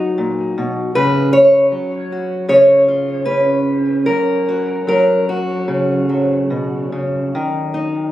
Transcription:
Already playing: B2 F#3 D#4 F#4
0.18 A#2
0.58 B2
0.95 C#3 B4
1.33 C#5
1.72 F#3
2.12 F#4
2.49 C#3 C#5
2.88 F4
3.25 C#4 B4
4.06 F#2 A#4
4.49 F#4
4.87 F#3 A#4
5.29 F#4
5.68 C#3
6.09 F#3
6.50 B2
6.92 C#3
7.35 D#3
7.74 D#4

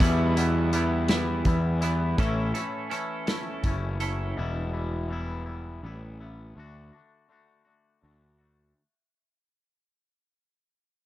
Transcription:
0.00 E2 B2 E3 G3 B3 E4, kick, closed hi-hat
0.36 E3 G3 B3 E4, closed hi-hat
0.73 E3 G3 B3 E4, closed hi-hat
1.09 E3 G3 B3 E4, snare, closed hi-hat
1.45 E2 E3 G3 B3 E4, kick, closed hi-hat
1.81 E3 G3 B3 E4, closed hi-hat
2.18 A1 A2 E3 A3 C#4 E4 A4, kick, closed hi-hat
2.54 A3 C#4 E4 A4, closed hi-hat
2.90 E3 A3 C#4 E4 A4, closed hi-hat
3.26 A3 C#4 E4 A4, snare, closed hi-hat
3.64 F#1 E3 A3 C#4, kick, closed hi-hat
3.68 E4
4.00 A3 C#4 E4 A4, closed hi-hat
4.35 E1 E2 B2 E3 G3 B3 E4
4.73 E3 G3 B3 E4
5.09 E3 G3 B3 E4
5.46 E3 G3 B3 E4
5.83 A1 E3 G3 B3 E4
6.20 E3 G3 B3 E4
6.56 D2 D3 A3 D4 F#4
6.93 A3 D4 F#4
7.29 D3 A3 D4 F#4
7.65 A3 D4 F#4
8.01 D2 D3 A3 D4 F#4
8.38 A3 D4 F#4

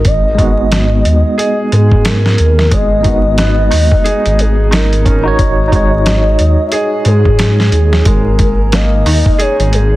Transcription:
0.05 G#1 D#5, kick, closed hi-hat
0.35 G#3 D#4, kick
0.39 B3 F#4, closed hi-hat
0.72 snare, closed hi-hat
1.05 D#2, closed hi-hat
1.38 G#4 D#5, closed hi-hat
1.72 G#2 G#3 G#4, closed hi-hat
1.92 kick
2.05 A#4, snare, closed hi-hat
2.26 snare
2.38 D#2, closed hi-hat
2.59 snare
2.71 G#1 G#3 D#5, kick, closed hi-hat
3.01 G#3 D#4, closed hi-hat
3.05 B3 F#4, kick
3.38 B3, snare, closed hi-hat
3.71 D#2 D#4, open hi-hat
3.92 kick
4.04 G#4 D#5, closed hi-hat
4.26 G#1, closed hi-hat
4.39 G#4, closed hi-hat
4.71 D#4 A#4, snare, closed hi-hat
4.93 closed hi-hat
5.05 C#4, kick, closed hi-hat
5.24 D#4 F#4 C#5
5.39 G#1 D#5, kick, closed hi-hat
5.68 D#4
5.72 G#3 F#4 C#5, kick, closed hi-hat
6.06 snare, closed hi-hat
6.39 D#2, closed hi-hat
6.67 E5
6.72 G#4 D#5, closed hi-hat
7.05 G#2 G#3 G#4, closed hi-hat
7.25 kick
7.39 snare, closed hi-hat
7.60 snare
7.72 D#2, closed hi-hat
7.93 snare
8.05 G#1 G#3 A#4, kick, closed hi-hat
8.39 kick, closed hi-hat
8.72 A#3 D#5, snare, closed hi-hat
9.06 D#2 D#4, open hi-hat
9.26 kick
9.39 G#4 C#5, closed hi-hat
9.59 G#1, closed hi-hat
9.73 G#4, closed hi-hat

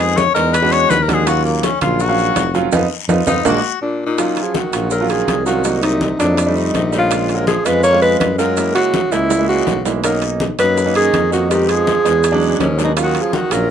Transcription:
Already playing: F2 G#3 B3 D#4 G#4
0.00 high bongo, high conga
0.17 C#5, high bongo, high conga, low timbale, short guiro, maracas
0.34 E2 G#3 B3 D#4 A#4, high conga, high timbale, short guiro, maracas
0.53 B4, high bongo, high conga, high timbale, long guiro, maracas
0.62 G#3 C#4 D4 F#4
0.72 C#5, high bongo, high conga, high timbale, maracas
0.90 D#2 B4, high bongo, low bongo, high conga, low timbale, short guiro, maracas
1.02 A#4
1.08 G#3 C#4 D4 F#4, high bongo, high conga, high timbale, short guiro, maracas
1.14 G#4
1.26 F#3 C#4 F4 F#4, high bongo, high timbale, long guiro, maracas
1.45 A#3, high bongo, high conga, maracas
1.63 C#4, high bongo, high conga, high timbale, low timbale, short guiro, maracas
1.81 A#1 F#3 C#4 F4, high conga, low conga, high timbale, short guiro, maracas
2.00 F#4, high bongo, high conga, long guiro, maracas
2.09 F#3 C#4 F5
2.18 high bongo, high conga, maracas
2.35 F1, high bongo, low bongo, high conga, high timbale, low timbale, short guiro, maracas
2.54 F#3 C#4 F4, high bongo, high conga, short guiro, maracas
2.72 F2 B3 D#4 F4, low bongo, high conga, high timbale, long guiro, maracas
3.08 F2 B3 D#4 F4, low bongo, high conga, high timbale, long guiro, maracas
3.26 F2 B3 D#4 F4, low bongo, high conga, high timbale, long guiro, maracas
3.45 A#1 G#3 A#3 D4 F#4, low bongo, high conga, high timbale, long guiro, maracas
3.81 A#2 D4
4.06 A#2 D#4
4.18 F#3 C#4 F4, high bongo, high conga, high timbale, long guiro, maracas
4.36 high bongo, high conga, high timbale, maracas
4.42 F3 G#4
4.54 D#3 F#4, high bongo, high conga, short guiro, maracas
4.73 A#1 F#3 C#4 F4, high bongo, high conga, high timbale, short guiro, maracas
4.91 F#3 A#4, high bongo, high conga, long guiro, maracas
5.01 F#3 C#4 F4
5.09 D#3 G#4, high conga, high timbale, maracas
5.27 C2, high bongo, low bongo, high conga, high timbale, short guiro, maracas
5.45 D#3 F#3 C#4 F4 F#4, high conga, short guiro, maracas
5.64 F#3 A#3 D#4, high bongo, high conga, high timbale, long guiro, maracas
5.81 C3 D#4, high bongo, high conga, high timbale, maracas
6.01 high bongo, high conga, short guiro, maracas
6.18 F2 A2 F#3 A#3 D4 D#4, high bongo, high conga, high timbale, short guiro, maracas
6.37 high bongo, high conga, high timbale, long guiro, maracas
6.46 G3 A3 D#4
6.55 C3 D#4, high bongo, high conga, maracas
6.73 A#1 C3 D#4, high bongo, low bongo, high conga, high timbale, short guiro, maracas
6.92 G3 A3 D#4, high conga, short guiro, maracas
6.97 C#3 F4
7.11 G#3 C#4 F4, high bongo, high conga, high timbale, long guiro, maracas
7.29 high bongo, high conga, high timbale, maracas
7.34 F#3 A#4
7.46 F3 G#4, high bongo, high conga, short guiro, maracas
7.65 F2 G#3 C#4 F4 B4, high conga, high timbale, short guiro, maracas
7.83 A#3 C#5, high bongo, high conga, long guiro, maracas
7.93 G#3 C#4 F4
8.01 G#3 B4, high bongo, high conga, high timbale, maracas
8.19 F#2 G#3 B4, high bongo, low bongo, high conga, high timbale, low timbale, short guiro, maracas
8.38 F#3 G#3 C#4 F4 A#4, short guiro, maracas
8.57 G#3 A#3 E4, high bongo, high conga, high timbale, long guiro, maracas
8.75 C#3 F#4, high conga, high timbale, maracas
8.93 high bongo, high conga, short guiro, maracas
9.11 C#2 C#3 G#3 A#3 E4, high bongo, high conga, high timbale, short guiro, maracas
9.30 high bongo, high conga, low timbale, long guiro, maracas
9.39 G#3 A#3 E4
9.49 C#3 F#4, high bongo, high conga, maracas
9.67 B1, high bongo, low bongo, high conga, low timbale, short guiro, maracas
9.85 G#3 A#3 E4, high conga, low timbale, short guiro, maracas
10.03 F#3 A#3 C#4 D#4 A#4, high bongo, high conga, high timbale, long guiro, maracas
10.22 high bongo, high conga, high timbale, maracas
10.40 high bongo, high conga, short guiro, maracas
10.58 F#2 F#3 A#3 C#4 D#4 B4, high bongo, high conga, high timbale, short guiro, maracas
10.77 high bongo, high conga, long guiro, maracas
10.86 A#3 C#4 D#4
10.95 D#3 G#4, high conga, high timbale, maracas
11.13 F2, high bongo, low bongo, high conga, high timbale, short guiro, maracas
11.31 D#3 A#3 C#4 D#4 F#4, high conga, short guiro, maracas
11.49 D#3 G#3 B3 D#4 G4, high bongo, high conga, high timbale, long guiro, maracas
11.69 F3 G#4, high bongo, high conga, high timbale, maracas
11.87 high bongo, high conga, short guiro, maracas
12.05 E2 G#3 B3 D#4, high bongo, high conga, high timbale, short guiro, maracas
12.23 high bongo, high conga, high timbale, long guiro, maracas
12.32 F#3 G#3 C#4 D4
12.42 high bongo, high conga, maracas
12.59 D#2 G#2 C#4, high bongo, low bongo, high conga, high timbale, short guiro, maracas
12.78 F#3 G#3 C#4 D4, high conga, short guiro, maracas
12.85 B2 D#4
12.96 F#3 C#4 F4, high bongo, high conga, high timbale, long guiro, maracas
13.03 D#3 F#4
13.15 high bongo, high conga, high timbale, maracas
13.21 F3 G#4
13.33 D#3 F#4, high bongo, high conga, short guiro, maracas
13.51 A#1 F#3 C#4 F4 A#4, high conga, high timbale, short guiro, maracas

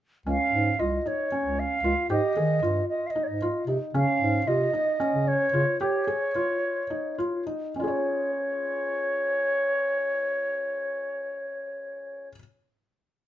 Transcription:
0.26 C#2 C#4 F5
0.52 G#2
0.79 C2 F4 D#5
1.06 D#4 C#5
1.32 C#4
1.44 C#2
1.59 F5
1.83 C#2 F4
2.10 G#2 G4 D#5
2.37 D#3 G#4
2.63 G2 F4
2.90 D#5
3.07 D#5 F5
3.16 D#4
3.24 C#5 D#5
3.28 G#2
3.42 F4
3.67 C3 D#4
3.94 C#3 C#4 F5
4.20 G#2
4.47 C3 F4 D#5
4.73 D#4
5.00 C#4
5.13 C#3
5.28 C#5
5.53 C#3 F4
5.81 G4 C#5
6.07 G#4
6.35 F4
6.90 D#4
7.18 F4
7.47 D#4
7.76 C#4 F4 D#5
7.82 G#4 C#5
7.88 C#5

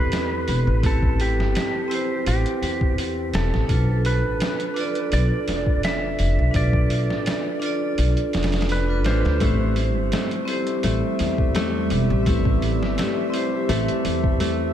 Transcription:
Already playing: E2 C4 E4 G4 A4 B4
0.12 snare, open hi-hat
0.48 E1, open hi-hat
0.67 A1
0.81 A1 C4 E4, kick, open hi-hat
0.85 G4 A4 B4
1.03 kick
1.20 G4, open hi-hat
1.38 G1, snare
1.55 snare, open hi-hat
1.88 C4 E4 G4, open hi-hat
1.94 C5
2.26 A1 G4, open hi-hat
2.46 closed hi-hat
2.62 E2, open hi-hat
2.81 kick
2.98 open hi-hat
3.34 E1 A4, snare, open hi-hat
3.54 A1, snare
3.67 B1 D4 F4, kick, open hi-hat
3.71 A4 B4
4.05 B4, open hi-hat
4.24 A1
4.40 snare, open hi-hat
4.60 closed hi-hat
4.74 D4 F4 A4, open hi-hat
4.80 D5
4.95 closed hi-hat
5.12 B1 D5, open hi-hat
5.48 F1, snare, open hi-hat
5.66 kick
5.83 E5, snare, open hi-hat
6.19 F1, open hi-hat
6.39 B1
6.51 B1 D4 F4, kick, open hi-hat
6.56 A4 B4 D5
6.73 kick
6.90 open hi-hat
7.10 A1, snare
7.26 snare, open hi-hat
7.60 D4 F4 A4, open hi-hat
7.66 D5
7.98 B1, open hi-hat
8.17 closed hi-hat
8.33 F1, snare, open hi-hat
8.43 snare, open hi-hat
8.52 snare, open hi-hat
8.61 snare, open hi-hat
8.69 B4, open hi-hat
8.87 D4 F4 A4 B4
9.04 A1 D4 F4 A4 B4 C5, snare, open hi-hat
9.25 D2, snare
9.38 A1 G3 A3 C4 E4, kick, open hi-hat
9.42 G4 C5 E5
9.76 open hi-hat
9.96 G1
10.12 A3, snare, open hi-hat
10.31 closed hi-hat
10.45 C4 E4, open hi-hat
10.50 G4 C5
10.67 closed hi-hat
10.83 A1 A3, open hi-hat
11.19 E2, snare, open hi-hat
11.38 kick
11.55 A3, snare, open hi-hat
11.90 E1, open hi-hat
12.10 A1
12.23 A1 A3 C4 E4, kick, open hi-hat
12.27 G4 B4
12.45 kick
12.62 open hi-hat
12.81 G1, snare
12.98 A3, snare, open hi-hat
13.30 C4 E4, open hi-hat
13.34 G4 C5
13.69 A1 A3, open hi-hat
13.88 closed hi-hat
14.05 E2, open hi-hat
14.24 kick
14.40 A3, open hi-hat

